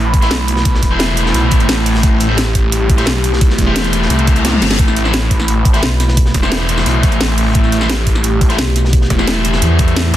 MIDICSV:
0, 0, Header, 1, 7, 480
1, 0, Start_track
1, 0, Key_signature, 0, "minor"
1, 0, Tempo, 344828
1, 912, Time_signature, 4, 2, 24, 8
1, 14154, End_track
2, 0, Start_track
2, 0, Title_t, "Analog synth pad"
2, 0, Program_c, 0, 89
2, 0, Note_on_c, 0, 57, 74
2, 0, Note_on_c, 0, 64, 70
2, 0, Note_on_c, 0, 83, 83
2, 2816, Note_off_c, 0, 83, 0
2, 2830, Note_on_c, 0, 67, 89
2, 6656, Note_off_c, 0, 67, 0
2, 6673, Note_on_c, 0, 83, 89
2, 10497, Note_off_c, 0, 83, 0
2, 10511, Note_on_c, 0, 67, 86
2, 14154, Note_off_c, 0, 57, 0
2, 14154, Note_off_c, 0, 64, 0
2, 14154, Note_off_c, 0, 67, 0
2, 14154, End_track
3, 0, Start_track
3, 0, Title_t, "Distorted electric guitar"
3, 0, Program_c, 1, 30
3, 305, Note_on_c, 1, 72, 100
3, 313, Note_on_c, 1, 64, 82
3, 321, Note_on_c, 1, 57, 77
3, 449, Note_off_c, 1, 57, 0
3, 449, Note_off_c, 1, 64, 0
3, 449, Note_off_c, 1, 72, 0
3, 1268, Note_on_c, 1, 72, 94
3, 1274, Note_on_c, 1, 64, 74
3, 1279, Note_on_c, 1, 57, 79
3, 3162, Note_off_c, 1, 57, 0
3, 3162, Note_off_c, 1, 64, 0
3, 3162, Note_off_c, 1, 72, 0
3, 3187, Note_on_c, 1, 72, 101
3, 3194, Note_on_c, 1, 64, 76
3, 3201, Note_on_c, 1, 57, 82
3, 3329, Note_off_c, 1, 57, 0
3, 3330, Note_off_c, 1, 64, 0
3, 3330, Note_off_c, 1, 72, 0
3, 4148, Note_on_c, 1, 72, 99
3, 4155, Note_on_c, 1, 64, 74
3, 4158, Note_on_c, 1, 57, 83
3, 4289, Note_off_c, 1, 64, 0
3, 4290, Note_off_c, 1, 57, 0
3, 4290, Note_off_c, 1, 72, 0
3, 5109, Note_on_c, 1, 72, 94
3, 5112, Note_on_c, 1, 64, 74
3, 5118, Note_on_c, 1, 57, 77
3, 7002, Note_off_c, 1, 57, 0
3, 7002, Note_off_c, 1, 64, 0
3, 7002, Note_off_c, 1, 72, 0
3, 7027, Note_on_c, 1, 72, 97
3, 7033, Note_on_c, 1, 64, 71
3, 7040, Note_on_c, 1, 57, 72
3, 7169, Note_off_c, 1, 57, 0
3, 7169, Note_off_c, 1, 64, 0
3, 7169, Note_off_c, 1, 72, 0
3, 7985, Note_on_c, 1, 72, 95
3, 7993, Note_on_c, 1, 64, 73
3, 8000, Note_on_c, 1, 57, 71
3, 8129, Note_off_c, 1, 57, 0
3, 8129, Note_off_c, 1, 64, 0
3, 8129, Note_off_c, 1, 72, 0
3, 8948, Note_on_c, 1, 72, 102
3, 8952, Note_on_c, 1, 64, 68
3, 8959, Note_on_c, 1, 57, 76
3, 10842, Note_off_c, 1, 57, 0
3, 10842, Note_off_c, 1, 64, 0
3, 10842, Note_off_c, 1, 72, 0
3, 10867, Note_on_c, 1, 72, 98
3, 10873, Note_on_c, 1, 64, 77
3, 10878, Note_on_c, 1, 57, 84
3, 11009, Note_off_c, 1, 57, 0
3, 11009, Note_off_c, 1, 64, 0
3, 11009, Note_off_c, 1, 72, 0
3, 11828, Note_on_c, 1, 72, 100
3, 11832, Note_on_c, 1, 64, 79
3, 11839, Note_on_c, 1, 57, 82
3, 11969, Note_off_c, 1, 57, 0
3, 11969, Note_off_c, 1, 72, 0
3, 11970, Note_off_c, 1, 64, 0
3, 12787, Note_on_c, 1, 72, 89
3, 12793, Note_on_c, 1, 64, 75
3, 12802, Note_on_c, 1, 57, 79
3, 14087, Note_off_c, 1, 57, 0
3, 14087, Note_off_c, 1, 64, 0
3, 14087, Note_off_c, 1, 72, 0
3, 14106, Note_on_c, 1, 72, 95
3, 14154, Note_off_c, 1, 72, 0
3, 14154, End_track
4, 0, Start_track
4, 0, Title_t, "FM bass"
4, 0, Program_c, 2, 39
4, 8111, Note_on_c, 2, 35, 98
4, 8812, Note_off_c, 2, 35, 0
4, 11951, Note_on_c, 2, 35, 91
4, 12652, Note_off_c, 2, 35, 0
4, 13390, Note_on_c, 2, 40, 98
4, 14092, Note_off_c, 2, 40, 0
4, 14154, End_track
5, 0, Start_track
5, 0, Title_t, "Detuned saw bass"
5, 0, Program_c, 3, 39
5, 0, Note_on_c, 3, 33, 96
5, 412, Note_off_c, 3, 33, 0
5, 430, Note_on_c, 3, 35, 100
5, 1132, Note_off_c, 3, 35, 0
5, 1150, Note_on_c, 3, 28, 96
5, 1851, Note_off_c, 3, 28, 0
5, 1870, Note_on_c, 3, 35, 98
5, 2332, Note_off_c, 3, 35, 0
5, 2351, Note_on_c, 3, 33, 102
5, 2812, Note_off_c, 3, 33, 0
5, 2831, Note_on_c, 3, 33, 94
5, 3052, Note_off_c, 3, 33, 0
5, 3071, Note_on_c, 3, 33, 93
5, 4252, Note_off_c, 3, 33, 0
5, 4271, Note_on_c, 3, 35, 99
5, 4972, Note_off_c, 3, 35, 0
5, 4991, Note_on_c, 3, 28, 93
5, 5692, Note_off_c, 3, 28, 0
5, 5710, Note_on_c, 3, 36, 97
5, 6412, Note_off_c, 3, 36, 0
5, 6430, Note_on_c, 3, 31, 99
5, 6652, Note_off_c, 3, 31, 0
5, 6671, Note_on_c, 3, 33, 95
5, 6892, Note_off_c, 3, 33, 0
5, 6911, Note_on_c, 3, 33, 90
5, 8092, Note_off_c, 3, 33, 0
5, 8831, Note_on_c, 3, 28, 98
5, 9532, Note_off_c, 3, 28, 0
5, 9551, Note_on_c, 3, 35, 100
5, 10012, Note_off_c, 3, 35, 0
5, 10031, Note_on_c, 3, 33, 101
5, 10492, Note_off_c, 3, 33, 0
5, 10511, Note_on_c, 3, 33, 98
5, 10732, Note_off_c, 3, 33, 0
5, 10751, Note_on_c, 3, 33, 97
5, 11932, Note_off_c, 3, 33, 0
5, 12671, Note_on_c, 3, 28, 92
5, 13372, Note_off_c, 3, 28, 0
5, 14110, Note_on_c, 3, 36, 102
5, 14154, Note_off_c, 3, 36, 0
5, 14154, End_track
6, 0, Start_track
6, 0, Title_t, "Reverse cymbal"
6, 0, Program_c, 4, 119
6, 5711, Note_on_c, 4, 60, 60
6, 6671, Note_off_c, 4, 60, 0
6, 14154, End_track
7, 0, Start_track
7, 0, Title_t, "Drums"
7, 190, Note_on_c, 9, 36, 99
7, 190, Note_on_c, 9, 42, 59
7, 199, Note_off_c, 9, 42, 0
7, 199, Note_on_c, 9, 42, 62
7, 306, Note_on_c, 9, 38, 47
7, 311, Note_off_c, 9, 42, 0
7, 311, Note_on_c, 9, 42, 33
7, 329, Note_off_c, 9, 36, 0
7, 427, Note_off_c, 9, 38, 0
7, 427, Note_on_c, 9, 38, 106
7, 430, Note_off_c, 9, 38, 0
7, 430, Note_off_c, 9, 42, 0
7, 430, Note_on_c, 9, 38, 109
7, 430, Note_on_c, 9, 42, 86
7, 432, Note_off_c, 9, 42, 0
7, 432, Note_on_c, 9, 42, 85
7, 569, Note_off_c, 9, 38, 0
7, 571, Note_off_c, 9, 42, 0
7, 668, Note_on_c, 9, 42, 60
7, 670, Note_off_c, 9, 42, 0
7, 670, Note_on_c, 9, 42, 61
7, 780, Note_on_c, 9, 38, 58
7, 810, Note_off_c, 9, 42, 0
7, 910, Note_on_c, 9, 36, 112
7, 910, Note_on_c, 9, 42, 92
7, 914, Note_off_c, 9, 42, 0
7, 914, Note_on_c, 9, 42, 75
7, 919, Note_off_c, 9, 38, 0
7, 1035, Note_on_c, 9, 38, 46
7, 1049, Note_off_c, 9, 36, 0
7, 1053, Note_off_c, 9, 42, 0
7, 1150, Note_on_c, 9, 36, 59
7, 1150, Note_on_c, 9, 42, 60
7, 1154, Note_off_c, 9, 42, 0
7, 1154, Note_on_c, 9, 42, 66
7, 1174, Note_off_c, 9, 38, 0
7, 1290, Note_off_c, 9, 36, 0
7, 1293, Note_off_c, 9, 42, 0
7, 1384, Note_on_c, 9, 38, 109
7, 1390, Note_off_c, 9, 38, 0
7, 1390, Note_on_c, 9, 38, 106
7, 1390, Note_on_c, 9, 42, 87
7, 1393, Note_off_c, 9, 42, 0
7, 1393, Note_on_c, 9, 42, 85
7, 1530, Note_off_c, 9, 38, 0
7, 1533, Note_off_c, 9, 42, 0
7, 1627, Note_on_c, 9, 42, 68
7, 1631, Note_off_c, 9, 42, 0
7, 1631, Note_on_c, 9, 42, 65
7, 1753, Note_on_c, 9, 38, 53
7, 1770, Note_off_c, 9, 42, 0
7, 1871, Note_on_c, 9, 42, 91
7, 1892, Note_off_c, 9, 38, 0
7, 2010, Note_off_c, 9, 42, 0
7, 2103, Note_on_c, 9, 42, 65
7, 2111, Note_off_c, 9, 42, 0
7, 2111, Note_on_c, 9, 36, 95
7, 2111, Note_on_c, 9, 42, 61
7, 2225, Note_off_c, 9, 42, 0
7, 2225, Note_on_c, 9, 42, 37
7, 2231, Note_off_c, 9, 42, 0
7, 2231, Note_on_c, 9, 42, 32
7, 2250, Note_off_c, 9, 36, 0
7, 2347, Note_off_c, 9, 42, 0
7, 2347, Note_on_c, 9, 42, 90
7, 2349, Note_on_c, 9, 38, 104
7, 2351, Note_off_c, 9, 38, 0
7, 2351, Note_off_c, 9, 42, 0
7, 2351, Note_on_c, 9, 38, 114
7, 2351, Note_on_c, 9, 42, 90
7, 2490, Note_off_c, 9, 38, 0
7, 2490, Note_off_c, 9, 42, 0
7, 2591, Note_on_c, 9, 42, 63
7, 2593, Note_on_c, 9, 46, 74
7, 2707, Note_on_c, 9, 38, 45
7, 2730, Note_off_c, 9, 42, 0
7, 2732, Note_off_c, 9, 46, 0
7, 2830, Note_on_c, 9, 42, 93
7, 2831, Note_on_c, 9, 36, 113
7, 2847, Note_off_c, 9, 38, 0
7, 2970, Note_off_c, 9, 36, 0
7, 2970, Note_off_c, 9, 42, 0
7, 3065, Note_on_c, 9, 42, 68
7, 3071, Note_off_c, 9, 42, 0
7, 3071, Note_on_c, 9, 42, 62
7, 3210, Note_off_c, 9, 42, 0
7, 3304, Note_on_c, 9, 38, 101
7, 3310, Note_off_c, 9, 38, 0
7, 3310, Note_on_c, 9, 38, 106
7, 3310, Note_on_c, 9, 42, 89
7, 3450, Note_off_c, 9, 38, 0
7, 3450, Note_off_c, 9, 42, 0
7, 3549, Note_on_c, 9, 42, 60
7, 3550, Note_off_c, 9, 42, 0
7, 3550, Note_on_c, 9, 42, 68
7, 3551, Note_on_c, 9, 36, 57
7, 3689, Note_off_c, 9, 42, 0
7, 3690, Note_off_c, 9, 36, 0
7, 3791, Note_on_c, 9, 42, 100
7, 3792, Note_off_c, 9, 42, 0
7, 3792, Note_on_c, 9, 42, 86
7, 3932, Note_off_c, 9, 42, 0
7, 4030, Note_on_c, 9, 42, 67
7, 4031, Note_off_c, 9, 42, 0
7, 4031, Note_on_c, 9, 36, 101
7, 4031, Note_on_c, 9, 42, 63
7, 4141, Note_on_c, 9, 38, 45
7, 4151, Note_off_c, 9, 42, 0
7, 4151, Note_on_c, 9, 42, 35
7, 4170, Note_off_c, 9, 36, 0
7, 4260, Note_off_c, 9, 38, 0
7, 4260, Note_on_c, 9, 38, 118
7, 4269, Note_off_c, 9, 42, 0
7, 4269, Note_on_c, 9, 42, 89
7, 4271, Note_off_c, 9, 38, 0
7, 4271, Note_off_c, 9, 42, 0
7, 4271, Note_on_c, 9, 38, 115
7, 4271, Note_on_c, 9, 42, 92
7, 4410, Note_off_c, 9, 38, 0
7, 4410, Note_off_c, 9, 42, 0
7, 4510, Note_on_c, 9, 42, 70
7, 4634, Note_on_c, 9, 38, 62
7, 4650, Note_off_c, 9, 42, 0
7, 4750, Note_on_c, 9, 42, 97
7, 4751, Note_on_c, 9, 36, 120
7, 4754, Note_off_c, 9, 42, 0
7, 4754, Note_on_c, 9, 42, 90
7, 4773, Note_off_c, 9, 38, 0
7, 4871, Note_on_c, 9, 38, 46
7, 4890, Note_off_c, 9, 36, 0
7, 4893, Note_off_c, 9, 42, 0
7, 4985, Note_on_c, 9, 42, 63
7, 4991, Note_off_c, 9, 42, 0
7, 4991, Note_on_c, 9, 36, 63
7, 4991, Note_on_c, 9, 42, 66
7, 5010, Note_off_c, 9, 38, 0
7, 5130, Note_off_c, 9, 36, 0
7, 5130, Note_off_c, 9, 42, 0
7, 5231, Note_on_c, 9, 38, 109
7, 5231, Note_on_c, 9, 42, 96
7, 5234, Note_off_c, 9, 42, 0
7, 5234, Note_on_c, 9, 42, 81
7, 5235, Note_off_c, 9, 38, 0
7, 5235, Note_on_c, 9, 38, 121
7, 5351, Note_off_c, 9, 42, 0
7, 5351, Note_on_c, 9, 42, 38
7, 5374, Note_off_c, 9, 38, 0
7, 5471, Note_off_c, 9, 42, 0
7, 5471, Note_on_c, 9, 42, 69
7, 5472, Note_off_c, 9, 42, 0
7, 5472, Note_on_c, 9, 42, 64
7, 5596, Note_on_c, 9, 38, 54
7, 5611, Note_off_c, 9, 42, 0
7, 5707, Note_on_c, 9, 42, 90
7, 5710, Note_off_c, 9, 42, 0
7, 5710, Note_on_c, 9, 42, 96
7, 5735, Note_off_c, 9, 38, 0
7, 5830, Note_off_c, 9, 42, 0
7, 5830, Note_on_c, 9, 42, 34
7, 5947, Note_off_c, 9, 42, 0
7, 5947, Note_on_c, 9, 42, 66
7, 5951, Note_off_c, 9, 42, 0
7, 5951, Note_on_c, 9, 36, 98
7, 5951, Note_on_c, 9, 42, 69
7, 6063, Note_off_c, 9, 42, 0
7, 6063, Note_on_c, 9, 42, 42
7, 6071, Note_off_c, 9, 42, 0
7, 6071, Note_on_c, 9, 42, 35
7, 6090, Note_off_c, 9, 36, 0
7, 6191, Note_off_c, 9, 42, 0
7, 6191, Note_on_c, 9, 38, 61
7, 6191, Note_on_c, 9, 42, 96
7, 6193, Note_off_c, 9, 38, 0
7, 6193, Note_on_c, 9, 38, 119
7, 6195, Note_off_c, 9, 42, 0
7, 6195, Note_on_c, 9, 42, 89
7, 6311, Note_on_c, 9, 48, 60
7, 6332, Note_off_c, 9, 38, 0
7, 6334, Note_off_c, 9, 42, 0
7, 6427, Note_on_c, 9, 38, 77
7, 6431, Note_off_c, 9, 38, 0
7, 6431, Note_on_c, 9, 38, 81
7, 6431, Note_on_c, 9, 42, 65
7, 6434, Note_off_c, 9, 42, 0
7, 6434, Note_on_c, 9, 42, 63
7, 6450, Note_off_c, 9, 48, 0
7, 6493, Note_off_c, 9, 42, 0
7, 6493, Note_on_c, 9, 42, 58
7, 6496, Note_off_c, 9, 38, 0
7, 6496, Note_on_c, 9, 38, 83
7, 6551, Note_off_c, 9, 38, 0
7, 6551, Note_off_c, 9, 42, 0
7, 6551, Note_on_c, 9, 38, 87
7, 6551, Note_on_c, 9, 42, 69
7, 6555, Note_off_c, 9, 38, 0
7, 6555, Note_on_c, 9, 38, 92
7, 6601, Note_off_c, 9, 38, 0
7, 6601, Note_on_c, 9, 38, 97
7, 6620, Note_off_c, 9, 42, 0
7, 6620, Note_on_c, 9, 42, 73
7, 6667, Note_off_c, 9, 42, 0
7, 6667, Note_on_c, 9, 42, 89
7, 6671, Note_off_c, 9, 42, 0
7, 6671, Note_on_c, 9, 36, 118
7, 6671, Note_on_c, 9, 42, 92
7, 6741, Note_off_c, 9, 38, 0
7, 6791, Note_on_c, 9, 40, 34
7, 6810, Note_off_c, 9, 36, 0
7, 6810, Note_off_c, 9, 42, 0
7, 6911, Note_on_c, 9, 42, 64
7, 6914, Note_off_c, 9, 42, 0
7, 6914, Note_on_c, 9, 42, 72
7, 6930, Note_off_c, 9, 40, 0
7, 7031, Note_on_c, 9, 40, 34
7, 7053, Note_off_c, 9, 42, 0
7, 7144, Note_on_c, 9, 42, 89
7, 7151, Note_off_c, 9, 42, 0
7, 7151, Note_on_c, 9, 38, 118
7, 7151, Note_on_c, 9, 42, 91
7, 7156, Note_off_c, 9, 38, 0
7, 7156, Note_on_c, 9, 38, 112
7, 7170, Note_off_c, 9, 40, 0
7, 7291, Note_off_c, 9, 42, 0
7, 7295, Note_off_c, 9, 38, 0
7, 7391, Note_on_c, 9, 36, 61
7, 7391, Note_on_c, 9, 42, 68
7, 7398, Note_off_c, 9, 42, 0
7, 7398, Note_on_c, 9, 42, 68
7, 7511, Note_on_c, 9, 40, 35
7, 7530, Note_off_c, 9, 36, 0
7, 7537, Note_off_c, 9, 42, 0
7, 7630, Note_on_c, 9, 42, 96
7, 7640, Note_off_c, 9, 42, 0
7, 7640, Note_on_c, 9, 42, 77
7, 7650, Note_off_c, 9, 40, 0
7, 7779, Note_off_c, 9, 42, 0
7, 7866, Note_on_c, 9, 42, 64
7, 7870, Note_off_c, 9, 42, 0
7, 7870, Note_on_c, 9, 42, 65
7, 7871, Note_on_c, 9, 36, 103
7, 7985, Note_on_c, 9, 38, 44
7, 7991, Note_off_c, 9, 42, 0
7, 7991, Note_on_c, 9, 42, 35
7, 8010, Note_off_c, 9, 36, 0
7, 8111, Note_off_c, 9, 38, 0
7, 8111, Note_off_c, 9, 42, 0
7, 8111, Note_on_c, 9, 38, 116
7, 8111, Note_on_c, 9, 42, 92
7, 8115, Note_off_c, 9, 38, 0
7, 8115, Note_on_c, 9, 38, 111
7, 8119, Note_off_c, 9, 42, 0
7, 8119, Note_on_c, 9, 42, 81
7, 8255, Note_off_c, 9, 38, 0
7, 8259, Note_off_c, 9, 42, 0
7, 8351, Note_on_c, 9, 40, 36
7, 8351, Note_on_c, 9, 42, 65
7, 8363, Note_off_c, 9, 42, 0
7, 8363, Note_on_c, 9, 42, 70
7, 8463, Note_on_c, 9, 38, 60
7, 8491, Note_off_c, 9, 40, 0
7, 8502, Note_off_c, 9, 42, 0
7, 8591, Note_on_c, 9, 36, 121
7, 8591, Note_on_c, 9, 42, 87
7, 8602, Note_off_c, 9, 38, 0
7, 8707, Note_on_c, 9, 38, 55
7, 8730, Note_off_c, 9, 36, 0
7, 8730, Note_off_c, 9, 42, 0
7, 8831, Note_on_c, 9, 36, 68
7, 8831, Note_on_c, 9, 42, 62
7, 8846, Note_off_c, 9, 38, 0
7, 8951, Note_on_c, 9, 40, 34
7, 8970, Note_off_c, 9, 36, 0
7, 8970, Note_off_c, 9, 42, 0
7, 9071, Note_on_c, 9, 38, 124
7, 9071, Note_on_c, 9, 42, 87
7, 9072, Note_off_c, 9, 38, 0
7, 9072, Note_on_c, 9, 38, 120
7, 9073, Note_off_c, 9, 42, 0
7, 9073, Note_on_c, 9, 42, 80
7, 9090, Note_off_c, 9, 40, 0
7, 9211, Note_off_c, 9, 38, 0
7, 9213, Note_off_c, 9, 42, 0
7, 9305, Note_on_c, 9, 42, 68
7, 9311, Note_off_c, 9, 42, 0
7, 9311, Note_on_c, 9, 42, 64
7, 9431, Note_on_c, 9, 40, 36
7, 9439, Note_on_c, 9, 38, 57
7, 9451, Note_off_c, 9, 42, 0
7, 9551, Note_on_c, 9, 42, 96
7, 9559, Note_off_c, 9, 42, 0
7, 9559, Note_on_c, 9, 42, 87
7, 9571, Note_off_c, 9, 40, 0
7, 9578, Note_off_c, 9, 38, 0
7, 9698, Note_off_c, 9, 42, 0
7, 9790, Note_on_c, 9, 42, 68
7, 9791, Note_off_c, 9, 42, 0
7, 9791, Note_on_c, 9, 36, 106
7, 9791, Note_on_c, 9, 42, 64
7, 9908, Note_off_c, 9, 42, 0
7, 9908, Note_on_c, 9, 42, 39
7, 9911, Note_off_c, 9, 42, 0
7, 9911, Note_on_c, 9, 42, 34
7, 9930, Note_off_c, 9, 36, 0
7, 10028, Note_on_c, 9, 38, 107
7, 10031, Note_off_c, 9, 38, 0
7, 10031, Note_off_c, 9, 42, 0
7, 10031, Note_on_c, 9, 38, 124
7, 10031, Note_on_c, 9, 42, 84
7, 10170, Note_off_c, 9, 38, 0
7, 10170, Note_off_c, 9, 42, 0
7, 10270, Note_on_c, 9, 42, 65
7, 10278, Note_on_c, 9, 46, 77
7, 10410, Note_off_c, 9, 42, 0
7, 10417, Note_off_c, 9, 46, 0
7, 10502, Note_on_c, 9, 42, 86
7, 10511, Note_off_c, 9, 42, 0
7, 10511, Note_on_c, 9, 36, 122
7, 10511, Note_on_c, 9, 42, 90
7, 10631, Note_on_c, 9, 40, 33
7, 10650, Note_off_c, 9, 36, 0
7, 10650, Note_off_c, 9, 42, 0
7, 10751, Note_on_c, 9, 42, 60
7, 10753, Note_off_c, 9, 42, 0
7, 10753, Note_on_c, 9, 42, 72
7, 10770, Note_off_c, 9, 40, 0
7, 10870, Note_on_c, 9, 40, 34
7, 10892, Note_off_c, 9, 42, 0
7, 10990, Note_on_c, 9, 38, 122
7, 10990, Note_on_c, 9, 42, 88
7, 10995, Note_off_c, 9, 42, 0
7, 10995, Note_on_c, 9, 42, 98
7, 10999, Note_off_c, 9, 38, 0
7, 10999, Note_on_c, 9, 38, 115
7, 11010, Note_off_c, 9, 40, 0
7, 11134, Note_off_c, 9, 42, 0
7, 11138, Note_off_c, 9, 38, 0
7, 11230, Note_on_c, 9, 42, 63
7, 11231, Note_on_c, 9, 36, 63
7, 11238, Note_off_c, 9, 42, 0
7, 11238, Note_on_c, 9, 42, 66
7, 11350, Note_on_c, 9, 40, 34
7, 11370, Note_off_c, 9, 36, 0
7, 11377, Note_off_c, 9, 42, 0
7, 11464, Note_on_c, 9, 42, 79
7, 11470, Note_off_c, 9, 42, 0
7, 11470, Note_on_c, 9, 42, 95
7, 11489, Note_off_c, 9, 40, 0
7, 11609, Note_off_c, 9, 42, 0
7, 11710, Note_on_c, 9, 42, 64
7, 11711, Note_on_c, 9, 36, 113
7, 11718, Note_off_c, 9, 42, 0
7, 11718, Note_on_c, 9, 42, 62
7, 11829, Note_on_c, 9, 38, 47
7, 11831, Note_off_c, 9, 42, 0
7, 11831, Note_on_c, 9, 42, 33
7, 11850, Note_off_c, 9, 36, 0
7, 11950, Note_off_c, 9, 42, 0
7, 11950, Note_on_c, 9, 42, 86
7, 11951, Note_off_c, 9, 38, 0
7, 11951, Note_off_c, 9, 42, 0
7, 11951, Note_on_c, 9, 38, 127
7, 11951, Note_on_c, 9, 42, 89
7, 11953, Note_off_c, 9, 38, 0
7, 11953, Note_on_c, 9, 38, 116
7, 12090, Note_off_c, 9, 42, 0
7, 12092, Note_off_c, 9, 38, 0
7, 12188, Note_on_c, 9, 42, 65
7, 12191, Note_off_c, 9, 42, 0
7, 12191, Note_on_c, 9, 40, 35
7, 12191, Note_on_c, 9, 42, 62
7, 12316, Note_on_c, 9, 38, 57
7, 12330, Note_off_c, 9, 40, 0
7, 12330, Note_off_c, 9, 42, 0
7, 12431, Note_on_c, 9, 36, 124
7, 12431, Note_on_c, 9, 42, 89
7, 12439, Note_off_c, 9, 42, 0
7, 12439, Note_on_c, 9, 42, 90
7, 12455, Note_off_c, 9, 38, 0
7, 12550, Note_on_c, 9, 38, 51
7, 12570, Note_off_c, 9, 36, 0
7, 12579, Note_off_c, 9, 42, 0
7, 12671, Note_on_c, 9, 36, 65
7, 12671, Note_on_c, 9, 42, 58
7, 12674, Note_off_c, 9, 42, 0
7, 12674, Note_on_c, 9, 42, 66
7, 12689, Note_off_c, 9, 38, 0
7, 12791, Note_on_c, 9, 40, 34
7, 12810, Note_off_c, 9, 36, 0
7, 12813, Note_off_c, 9, 42, 0
7, 12911, Note_on_c, 9, 38, 121
7, 12911, Note_on_c, 9, 42, 84
7, 12915, Note_off_c, 9, 42, 0
7, 12915, Note_on_c, 9, 42, 95
7, 12930, Note_off_c, 9, 40, 0
7, 13050, Note_off_c, 9, 38, 0
7, 13055, Note_off_c, 9, 42, 0
7, 13146, Note_on_c, 9, 42, 57
7, 13151, Note_off_c, 9, 42, 0
7, 13151, Note_on_c, 9, 42, 64
7, 13267, Note_on_c, 9, 38, 54
7, 13271, Note_on_c, 9, 40, 32
7, 13290, Note_off_c, 9, 42, 0
7, 13391, Note_on_c, 9, 42, 91
7, 13392, Note_off_c, 9, 42, 0
7, 13392, Note_on_c, 9, 42, 79
7, 13406, Note_off_c, 9, 38, 0
7, 13411, Note_off_c, 9, 40, 0
7, 13531, Note_off_c, 9, 42, 0
7, 13624, Note_on_c, 9, 42, 66
7, 13631, Note_off_c, 9, 42, 0
7, 13631, Note_on_c, 9, 36, 109
7, 13631, Note_on_c, 9, 42, 60
7, 13751, Note_off_c, 9, 42, 0
7, 13751, Note_on_c, 9, 42, 32
7, 13752, Note_off_c, 9, 42, 0
7, 13752, Note_on_c, 9, 42, 40
7, 13770, Note_off_c, 9, 36, 0
7, 13871, Note_off_c, 9, 42, 0
7, 13871, Note_on_c, 9, 38, 121
7, 13871, Note_on_c, 9, 42, 85
7, 13873, Note_off_c, 9, 38, 0
7, 13873, Note_on_c, 9, 38, 124
7, 13875, Note_off_c, 9, 42, 0
7, 13875, Note_on_c, 9, 42, 85
7, 14012, Note_off_c, 9, 38, 0
7, 14015, Note_off_c, 9, 42, 0
7, 14111, Note_on_c, 9, 42, 63
7, 14154, Note_off_c, 9, 42, 0
7, 14154, End_track
0, 0, End_of_file